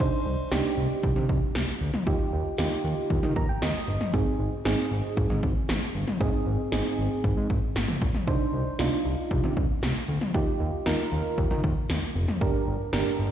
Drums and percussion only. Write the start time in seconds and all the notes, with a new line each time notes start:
0.00 kick, crash
0.52 snare
1.03 kick
1.16 mid tom
1.29 kick
1.55 snare
1.94 mid tom
2.07 kick
2.58 snare
3.10 kick
3.23 mid tom
3.36 kick
3.62 snare
4.01 mid tom
4.14 kick
4.65 snare
5.17 kick
5.30 mid tom
5.43 kick
5.69 snare
6.08 mid tom
6.21 kick
6.72 snare
7.24 kick
7.50 kick
7.76 snare
7.88 mid tom
8.02 kick
8.14 mid tom
8.27 kick
8.79 snare
9.31 kick
9.44 mid tom
9.57 kick
9.83 snare
10.21 mid tom
10.34 kick
10.86 snare
11.38 kick
11.51 mid tom
11.64 kick
11.90 snare
12.28 mid tom
12.41 kick
12.93 snare